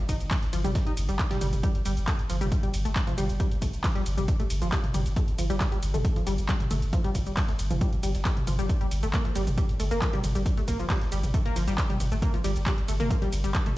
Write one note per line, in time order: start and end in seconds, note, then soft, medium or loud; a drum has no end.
0.09 0.20 G1 loud
0.09 0.15 D#4 medium
0.09 kick medium
0.09 closed hi-hat medium
0.09 open hi-hat loud
0.09 ride medium
0.09 shaker medium
0.20 0.31 G1 medium
0.20 closed hi-hat medium
0.20 shaker soft
0.31 0.35 A3 medium
0.31 kick loud
0.31 snare loud
0.31 clap loud
0.31 closed hi-hat medium
0.31 open hi-hat medium
0.31 ride medium
0.31 shaker soft
0.42 snare soft
0.42 closed hi-hat medium
0.53 0.64 G1 loud
0.53 0.60 F3 medium
0.53 closed hi-hat medium
0.53 open hi-hat medium
0.53 ride medium
0.53 shaker medium
0.64 0.75 G1 medium
0.64 0.71 G3 medium
0.64 closed hi-hat medium
0.64 mid tom medium
0.64 shaker soft
0.75 kick loud
0.75 snare loud
0.75 closed hi-hat medium
0.75 ride medium
0.75 shaker soft
0.87 0.93 D#4 medium
0.87 closed hi-hat medium
0.97 1.08 G1 loud
0.97 closed hi-hat medium
0.97 open hi-hat loud
0.97 ride medium
0.97 shaker medium
1.09 1.19 G1 medium
1.09 1.15 G3 medium
1.09 closed hi-hat medium
1.09 shaker soft
1.19 kick loud
1.19 snare loud
1.19 clap loud
1.19 closed hi-hat medium
1.19 closed hi-hat loud
1.19 ride medium
1.19 shaker soft
1.31 1.40 G3 medium
1.31 snare loud
1.31 closed hi-hat medium
1.31 mid tom medium
1.41 1.52 G1 loud
1.41 1.48 G3 medium
1.41 closed hi-hat medium
1.41 mid tom medium
1.41 open hi-hat medium
1.41 ride medium
1.41 shaker medium
1.53 1.63 G1 medium
1.53 closed hi-hat medium
1.53 mid tom medium
1.53 shaker soft
1.63 1.70 G3 loud
1.63 kick loud
1.63 closed hi-hat medium
1.63 ride medium
1.63 shaker soft
1.75 closed hi-hat medium
1.85 1.97 G1 loud
1.85 1.92 G3 medium
1.85 closed hi-hat medium
1.85 open hi-hat loud
1.85 ride medium
1.85 shaker medium
1.97 2.07 G1 medium
1.97 closed hi-hat medium
1.97 shaker soft
2.08 2.11 A3 medium
2.08 kick loud
2.08 snare loud
2.08 clap loud
2.08 closed hi-hat medium
2.08 ride medium
2.08 shaker soft
2.19 closed hi-hat medium
2.30 2.41 G1 loud
2.30 2.36 F3 medium
2.30 closed hi-hat medium
2.30 open hi-hat loud
2.30 ride medium
2.30 shaker medium
2.41 2.52 G1 medium
2.41 2.47 G3 loud
2.41 closed hi-hat medium
2.41 mid tom medium
2.41 shaker soft
2.52 kick loud
2.52 closed hi-hat loud
2.52 closed hi-hat medium
2.52 ride medium
2.52 shaker soft
2.63 2.69 G3 medium
2.63 closed hi-hat medium
2.74 2.85 G1 loud
2.74 closed hi-hat medium
2.74 open hi-hat loud
2.74 ride medium
2.74 shaker medium
2.85 2.96 G1 medium
2.85 2.89 A3 medium
2.85 closed hi-hat soft
2.85 closed hi-hat medium
2.85 shaker soft
2.96 kick loud
2.96 snare loud
2.96 clap loud
2.96 closed hi-hat loud
2.96 closed hi-hat medium
2.96 ride medium
2.96 shaker soft
3.07 3.13 F3 medium
3.07 closed hi-hat medium
3.07 closed hi-hat soft
3.07 mid tom medium
3.18 3.29 G1 loud
3.18 3.24 G3 loud
3.18 closed hi-hat medium
3.18 mid tom medium
3.18 open hi-hat loud
3.18 ride medium
3.18 shaker medium
3.29 3.40 G1 medium
3.29 closed hi-hat medium
3.29 shaker soft
3.40 3.46 G3 medium
3.40 kick loud
3.40 closed hi-hat medium
3.40 ride medium
3.40 shaker soft
3.51 closed hi-hat medium
3.62 3.73 G1 loud
3.62 3.66 A3 medium
3.62 kick medium
3.62 closed hi-hat medium
3.62 open hi-hat loud
3.62 ride medium
3.62 shaker medium
3.73 3.84 G1 medium
3.73 closed hi-hat medium
3.73 shaker soft
3.84 3.90 F3 medium
3.84 kick loud
3.84 snare loud
3.84 clap loud
3.84 closed hi-hat loud
3.84 open hi-hat medium
3.84 ride medium
3.84 shaker soft
3.95 4.01 G3 loud
3.95 snare soft
3.95 closed hi-hat medium
4.06 4.17 G1 loud
4.06 closed hi-hat medium
4.06 open hi-hat loud
4.06 ride medium
4.06 shaker medium
4.18 4.28 G1 medium
4.18 4.24 G3 medium
4.18 closed hi-hat medium
4.18 mid tom medium
4.18 shaker soft
4.28 kick loud
4.28 closed hi-hat loud
4.28 closed hi-hat medium
4.28 ride medium
4.28 shaker soft
4.40 4.43 A3 medium
4.40 closed hi-hat medium
4.50 4.61 G1 loud
4.50 closed hi-hat medium
4.50 open hi-hat loud
4.50 ride medium
4.50 shaker medium
4.62 4.72 G1 medium
4.62 4.68 F3 medium
4.62 snare soft
4.62 closed hi-hat medium
4.62 shaker soft
4.72 4.79 G3 loud
4.72 kick loud
4.72 snare loud
4.72 clap loud
4.72 closed hi-hat loud
4.72 closed hi-hat medium
4.72 ride medium
4.72 shaker soft
4.84 closed hi-hat medium
4.84 mid tom loud
4.94 5.05 G1 loud
4.94 5.01 G3 medium
4.94 closed hi-hat medium
4.94 mid tom loud
4.94 open hi-hat loud
4.94 ride medium
4.94 shaker medium
5.06 5.16 G1 medium
5.06 closed hi-hat medium
5.06 shaker soft
5.16 5.20 A3 medium
5.16 kick loud
5.16 closed hi-hat medium
5.16 ride medium
5.16 shaker soft
5.28 closed hi-hat medium
5.38 5.49 G1 loud
5.38 5.45 F3 medium
5.38 closed hi-hat medium
5.38 open hi-hat loud
5.38 ride medium
5.38 shaker medium
5.50 5.60 G1 medium
5.50 5.56 G3 loud
5.50 closed hi-hat medium
5.50 shaker soft
5.60 kick loud
5.60 snare loud
5.60 clap loud
5.60 closed hi-hat medium
5.60 ride medium
5.60 shaker soft
5.72 5.78 G3 medium
5.72 closed hi-hat medium
5.83 5.94 G1 loud
5.83 closed hi-hat medium
5.83 open hi-hat loud
5.83 ride medium
5.83 shaker medium
5.94 6.04 G1 medium
5.94 5.98 A3 medium
5.94 closed hi-hat medium
5.94 mid tom loud
5.94 shaker soft
6.05 kick loud
6.05 closed hi-hat medium
6.05 closed hi-hat loud
6.05 ride medium
6.05 shaker soft
6.16 6.22 F3 medium
6.16 closed hi-hat medium
6.27 6.38 G1 loud
6.27 6.33 G3 loud
6.27 closed hi-hat medium
6.27 open hi-hat loud
6.27 ride medium
6.27 shaker medium
6.38 6.49 G1 medium
6.38 closed hi-hat soft
6.38 closed hi-hat medium
6.38 shaker soft
6.49 6.55 G3 medium
6.49 kick loud
6.49 snare loud
6.49 clap loud
6.49 closed hi-hat medium
6.49 ride medium
6.49 shaker soft
6.60 closed hi-hat soft
6.60 closed hi-hat medium
6.60 mid tom loud
6.71 6.82 G1 loud
6.71 6.75 A3 medium
6.71 closed hi-hat medium
6.71 mid tom loud
6.71 open hi-hat loud
6.71 ride medium
6.71 shaker medium
6.82 6.93 G1 medium
6.82 closed hi-hat medium
6.82 shaker soft
6.93 6.99 F3 medium
6.93 kick loud
6.93 closed hi-hat medium
6.93 ride medium
6.93 shaker soft
7.04 7.10 G3 loud
7.04 closed hi-hat medium
7.15 7.26 G1 loud
7.15 kick medium
7.15 closed hi-hat medium
7.15 open hi-hat loud
7.15 ride medium
7.15 shaker medium
7.26 7.37 G1 medium
7.26 7.32 G3 medium
7.26 closed hi-hat medium
7.26 shaker soft
7.37 kick loud
7.37 snare loud
7.37 clap loud
7.37 closed hi-hat medium
7.37 open hi-hat medium
7.37 ride medium
7.37 shaker soft
7.48 7.52 A3 medium
7.48 snare soft
7.48 closed hi-hat medium
7.59 7.70 G1 loud
7.59 closed hi-hat medium
7.59 open hi-hat loud
7.59 ride medium
7.59 shaker medium
7.70 7.81 G1 medium
7.70 7.76 F3 medium
7.70 closed hi-hat medium
7.70 mid tom loud
7.70 shaker soft
7.81 7.88 G3 loud
7.81 kick loud
7.81 closed hi-hat medium
7.81 ride medium
7.81 shaker soft
7.93 closed hi-hat medium
8.03 8.14 G1 loud
8.03 8.10 G3 medium
8.03 closed hi-hat medium
8.03 open hi-hat loud
8.03 ride medium
8.03 shaker medium
8.15 8.25 G1 medium
8.15 snare soft
8.15 closed hi-hat medium
8.15 shaker soft
8.25 8.29 A3 medium
8.25 kick loud
8.25 snare loud
8.25 clap loud
8.25 closed hi-hat medium
8.25 ride medium
8.25 shaker soft
8.37 closed hi-hat medium
8.37 mid tom loud
8.47 8.59 G1 loud
8.47 8.54 F3 medium
8.47 closed hi-hat medium
8.47 mid tom loud
8.47 open hi-hat loud
8.47 ride medium
8.47 shaker medium
8.59 8.69 G1 medium
8.59 8.65 G3 loud
8.59 closed hi-hat medium
8.59 shaker soft
8.69 kick loud
8.69 closed hi-hat medium
8.69 ride medium
8.69 shaker soft
8.81 8.87 G3 medium
8.81 closed hi-hat medium
8.91 9.02 G1 loud
8.91 closed hi-hat medium
8.91 open hi-hat loud
8.91 ride medium
8.91 shaker medium
9.03 9.13 G1 medium
9.03 9.07 A3 medium
9.03 closed hi-hat medium
9.03 shaker soft
9.13 9.23 A#3 loud
9.13 kick loud
9.13 snare loud
9.13 clap loud
9.13 closed hi-hat medium
9.13 ride medium
9.13 shaker soft
9.25 9.31 F3 medium
9.25 closed hi-hat medium
9.36 9.47 G1 loud
9.36 9.42 G3 loud
9.36 closed hi-hat medium
9.36 open hi-hat loud
9.36 ride medium
9.36 shaker medium
9.47 9.57 G1 medium
9.47 closed hi-hat medium
9.47 mid tom loud
9.47 shaker soft
9.58 9.64 G3 medium
9.58 kick loud
9.58 closed hi-hat medium
9.58 ride medium
9.58 shaker soft
9.69 closed hi-hat medium
9.80 9.91 G1 loud
9.80 9.84 A3 medium
9.80 closed hi-hat medium
9.80 open hi-hat loud
9.80 ride medium
9.80 shaker medium
9.91 10.02 G1 medium
9.91 10.00 A#3 loud
9.91 closed hi-hat soft
9.91 closed hi-hat medium
9.91 shaker soft
10.02 10.08 F3 medium
10.02 kick loud
10.02 snare loud
10.02 clap loud
10.02 closed hi-hat medium
10.02 ride medium
10.02 shaker soft
10.13 10.19 G3 loud
10.13 closed hi-hat soft
10.13 closed hi-hat medium
10.13 mid tom loud
10.24 10.35 G1 loud
10.24 closed hi-hat medium
10.24 mid tom loud
10.24 open hi-hat loud
10.24 ride medium
10.24 shaker medium
10.35 10.46 G1 medium
10.35 10.41 G3 medium
10.35 closed hi-hat soft
10.35 shaker soft
10.46 kick loud
10.46 closed hi-hat medium
10.46 ride medium
10.46 shaker soft
10.57 10.61 A3 medium
10.57 closed hi-hat medium
10.68 10.79 G1 loud
10.68 10.78 A#3 loud
10.68 kick medium
10.68 closed hi-hat medium
10.68 open hi-hat loud
10.68 ride medium
10.68 shaker medium
10.79 10.90 G1 medium
10.79 10.85 F3 medium
10.79 closed hi-hat soft
10.79 shaker soft
10.90 10.96 G3 loud
10.90 kick loud
10.90 snare loud
10.90 clap loud
10.90 closed hi-hat medium
10.90 open hi-hat medium
10.90 ride medium
10.90 shaker soft
11.01 snare soft
11.01 closed hi-hat medium
11.12 11.23 G1 loud
11.12 11.18 G3 medium
11.12 closed hi-hat medium
11.12 open hi-hat medium
11.12 ride medium
11.12 shaker medium
11.23 11.34 G1 medium
11.23 closed hi-hat medium
11.23 mid tom loud
11.23 shaker soft
11.34 11.38 A3 medium
11.34 kick loud
11.34 closed hi-hat medium
11.34 ride medium
11.34 shaker soft
11.46 11.55 A#3 loud
11.46 closed hi-hat medium
11.56 11.67 G1 loud
11.56 11.63 F3 medium
11.56 closed hi-hat medium
11.56 open hi-hat loud
11.56 ride medium
11.56 shaker medium
11.67 11.78 G1 medium
11.67 11.74 G3 loud
11.67 snare soft
11.67 closed hi-hat medium
11.67 shaker soft
11.78 kick loud
11.78 snare loud
11.78 clap loud
11.78 closed hi-hat medium
11.78 ride medium
11.78 shaker soft
11.90 11.96 G3 medium
11.90 closed hi-hat medium
11.90 mid tom medium
12.00 12.11 G1 loud
12.00 closed hi-hat medium
12.00 mid tom loud
12.00 open hi-hat medium
12.00 ride medium
12.00 shaker medium
12.12 12.22 G1 medium
12.12 12.15 A3 medium
12.12 closed hi-hat soft
12.12 shaker soft
12.22 12.32 A#3 loud
12.22 kick loud
12.22 closed hi-hat medium
12.22 ride medium
12.22 shaker soft
12.34 12.40 F3 medium
12.34 closed hi-hat medium
12.44 12.55 G1 loud
12.44 12.51 G3 loud
12.44 closed hi-hat medium
12.44 open hi-hat loud
12.44 ride medium
12.44 shaker medium
12.56 12.66 G1 medium
12.56 closed hi-hat medium
12.56 shaker soft
12.66 12.73 G3 medium
12.66 kick loud
12.66 snare loud
12.66 clap loud
12.66 closed hi-hat loud
12.66 closed hi-hat medium
12.66 ride medium
12.66 shaker soft
12.78 closed hi-hat medium
12.88 12.99 G1 loud
12.88 12.92 A3 medium
12.88 closed hi-hat medium
12.88 open hi-hat medium
12.88 ride medium
12.88 shaker medium
13.00 13.10 G1 medium
13.00 13.09 A#3 loud
13.00 closed hi-hat medium
13.00 mid tom loud
13.00 shaker soft
13.10 13.17 F3 medium
13.10 kick loud
13.10 closed hi-hat medium
13.10 ride medium
13.10 shaker soft
13.22 13.28 G3 loud
13.22 closed hi-hat medium
13.32 13.44 G1 loud
13.32 closed hi-hat medium
13.32 open hi-hat loud
13.32 ride medium
13.32 shaker medium
13.44 13.54 G1 medium
13.44 13.50 G3 medium
13.44 closed hi-hat medium
13.44 closed hi-hat soft
13.44 shaker soft
13.55 kick loud
13.55 snare loud
13.55 clap loud
13.55 closed hi-hat medium
13.55 ride medium
13.55 shaker soft
13.66 13.70 A3 medium
13.66 closed hi-hat soft
13.66 closed hi-hat medium
13.66 mid tom medium